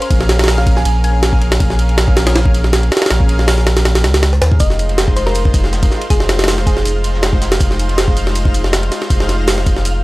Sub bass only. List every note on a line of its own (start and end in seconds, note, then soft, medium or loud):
0.11 0.84 A#1 loud
0.85 1.59 A#1 medium
1.60 2.90 A#1 loud
3.11 4.06 A#1 loud
4.04 4.40 C#2 medium
4.42 4.59 D#2 medium
4.60 5.90 F1 loud
6.10 6.84 F1 loud
6.85 7.59 F1 medium
7.60 8.90 F1 loud
9.10 10.04 F1 loud